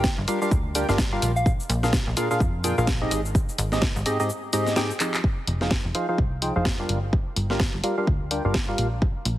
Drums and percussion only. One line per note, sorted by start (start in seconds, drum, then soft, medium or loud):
0.04 kick loud
0.04 snare loud
0.04 shaker soft
0.28 open hi-hat loud
0.28 shaker medium
0.42 shaker soft
0.51 kick loud
0.51 shaker soft
0.75 open hi-hat loud
0.75 shaker medium
0.89 snare soft
0.89 shaker soft
0.98 kick loud
0.98 snare loud
0.98 shaker soft
1.22 open hi-hat loud
1.22 shaker medium
1.36 shaker soft
1.46 kick loud
1.46 shaker soft
1.60 shaker soft
1.70 open hi-hat loud
1.70 shaker medium
1.83 snare soft
1.83 shaker soft
1.93 kick loud
1.93 snare loud
1.93 shaker soft
2.17 open hi-hat loud
2.17 shaker medium
2.31 shaker soft
2.40 kick loud
2.40 shaker soft
2.64 open hi-hat loud
2.64 shaker medium
2.78 shaker soft
2.87 kick loud
2.87 snare loud
2.87 shaker soft
3.11 open hi-hat loud
3.11 shaker medium
3.25 shaker soft
3.35 kick loud
3.35 shaker soft
3.49 shaker soft
3.58 open hi-hat loud
3.58 shaker medium
3.72 snare soft
3.72 shaker soft
3.82 kick loud
3.82 snare loud
3.82 shaker soft
3.96 shaker soft
4.06 open hi-hat loud
4.06 shaker medium
4.20 shaker soft
4.30 shaker soft
4.53 open hi-hat loud
4.53 shaker medium
4.67 snare soft
4.67 shaker soft
4.76 snare loud
4.76 shaker soft
4.91 shaker soft
5.00 clap medium
5.00 open hi-hat loud
5.00 shaker medium
5.14 clap loud
5.14 shaker soft
5.24 kick loud
5.47 open hi-hat loud
5.61 snare soft
5.71 kick loud
5.71 snare loud
5.95 open hi-hat loud
6.18 kick loud
6.42 open hi-hat loud
6.65 kick loud
6.65 snare loud
6.89 open hi-hat loud
7.13 kick loud
7.36 open hi-hat loud
7.50 snare soft
7.60 kick loud
7.60 snare loud
7.84 open hi-hat loud
8.07 kick loud
8.31 open hi-hat loud
8.54 kick loud
8.54 snare loud
8.78 open hi-hat loud
9.02 kick loud
9.25 open hi-hat loud